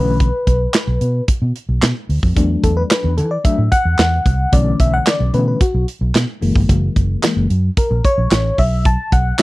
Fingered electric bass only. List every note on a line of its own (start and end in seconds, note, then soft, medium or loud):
0.00 0.30 B1 medium
0.47 0.66 B1 medium
0.87 0.97 B1 medium
1.01 1.20 B2 medium
1.42 1.51 B2 medium
1.69 1.78 B1 medium
1.82 1.92 B2 medium
2.09 2.19 D2 medium
2.23 2.32 F2 medium
2.36 2.55 E2 loud
2.64 2.82 E2 loud
3.04 3.20 E2 medium
3.18 3.37 E3 loud
3.58 3.68 A2 medium
3.85 3.95 E2 medium
3.99 4.17 E2 medium
4.26 4.44 C2 loud
4.53 4.71 B1 loud
4.80 4.98 B1 medium
5.20 5.30 B1 medium
5.34 5.52 B2 medium
5.74 5.84 B1 medium
6.01 6.10 B1 medium
6.15 6.24 B2 loud
6.42 6.51 F#1 medium
6.56 6.65 G1 medium
6.69 6.88 F#1 loud
6.96 7.15 F#1 medium
7.36 7.46 F#1 medium
7.50 7.69 F#2 medium
7.91 8.00 A#1 medium
8.18 8.27 A#1 medium
8.31 8.50 A1 loud
8.58 8.95 B1 loud
9.12 9.31 B1 medium